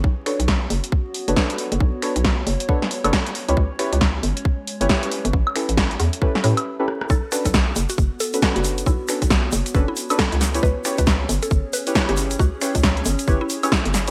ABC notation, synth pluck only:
X:1
M:4/4
L:1/16
Q:"Swing 16ths" 1/4=136
K:Bm
V:1 name="Synth pluck"
z16 | z16 | z16 | z16 |
A z2 A2 z2 F z2 A z2 F z2 | E z8 E z2 A2 z2 | B z2 B2 z2 A z2 B z2 G z2 | F z8 E z2 E2 z2 |]